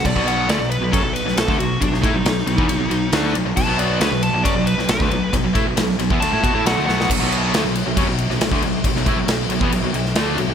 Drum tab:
CC |x---------------|----------------|x---------------|----------------|
RD |--x-x-x-x-x-x-x-|x-x-x-x-x-x-x-x-|--x-x-x-x-x-x-x-|x-x-x-x-x-x-x---|
SD |----o------oo---|-o--o-------o---|----o------oo---|----o-------o-oo|
BD |oo------o----o--|o-o----o--------|o-------o----o--|o-o----o--o-----|

CC |x-x-x-x-x-x-x-x-|x-x-x-x-x-x-x-x-|
RD |----------------|----------------|
SD |-o--o------oo---|-o--o------oo---|
BD |o-------o----o--|o-o----o--------|